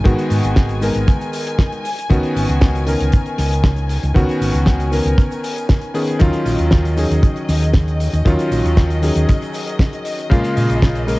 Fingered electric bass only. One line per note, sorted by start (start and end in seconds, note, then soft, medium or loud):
0.06 0.14 G#1 loud
0.31 0.40 G#2 medium
0.44 0.88 G#1 medium
0.95 1.04 G#1 medium
2.10 2.19 C#2 loud
2.36 2.45 G#1 medium
2.49 2.94 C#2 medium
3.01 3.09 C#2 medium
3.39 3.96 C#2 loud
4.03 4.12 C#2 medium
4.16 4.25 C#2 loud
4.41 4.50 G#1 medium
4.54 4.98 C#2 medium
5.05 5.14 C#2 medium
6.22 6.30 D#2 loud
6.46 6.55 A#1 medium
6.59 7.04 D#2 medium
7.11 7.19 D#2 medium
7.49 8.06 D#2 loud
8.13 8.22 D#2 medium
8.25 8.34 D#2 medium
8.51 8.60 A#1 medium
8.64 9.09 D#2 medium
9.16 9.24 D#2 medium
10.31 10.40 A#1 loud
10.57 10.66 A#2 medium
10.70 11.14 A#1 medium